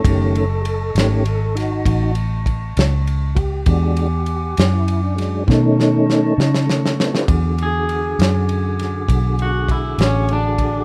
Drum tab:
RD |x-x-x-x-x-x-x-x-x-x-x-x-|x-x-x-x-x-x-------------|x-x-x-x-x-x-x-x-x-x-x-x-|
SD |------o---o-------o-----|------o---o-o-o-o-oooooo|------o---o-------o-----|
BD |o-----------o---o-----o-|o-----------o-----------|o-----------o---o-----o-|